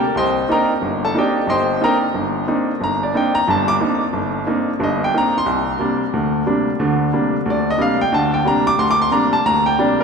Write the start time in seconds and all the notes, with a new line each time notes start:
Already playing: G4 A#4 D5 G5
0.15 C2 C5 D#5 G5 C6
0.49 A#3 C4 D4 D#4 G5 A#5
0.53 A#4 D#5
0.82 G1
1.05 A4 A5
1.14 A#3 C4 D4 D#4
1.18 G4 D5 D#5 G5
1.47 G1 C5 D#5 G5 C6
1.81 A#3 C4 D4 D#4 A#4 D#5 A#5
1.85 G5
2.14 G1
2.47 A#3 C4 D4 D#4
2.81 G1 A#5
3.03 D5
3.14 A#3 C4 D4 D#4 G5
3.35 A#5
3.48 G1 G2 A5
3.68 D6
3.80 A#3 C4 D4 D#4
4.13 G1
4.47 A#3 C4 D4 D#4
4.80 G1 G2 D#5
5.04 G5
5.14 A#3 C4 D4 D#4
5.18 A#5
5.38 C6
5.46 C2
5.79 C3 G3 A#3 D4
6.13 D2
6.46 C3 G3 A#3 D4
6.79 D2 D3
7.13 C3 G3 A#3 D4
7.46 D2
7.50 D5
7.70 D#5
7.78 C3 G3 A#3 D4 F5
8.01 G5
8.12 D2 D3 A5
8.34 G5
8.45 C3 G3 A#3 D4 A#5
8.67 D6
8.79 D2 C6
8.91 D6
9.02 C6
9.11 C3 G3 A#3 D4 A#5
9.33 A5
9.45 D2 A#5
9.66 G5
9.78 C3 G3 A#3 D4 D5
10.00 A#4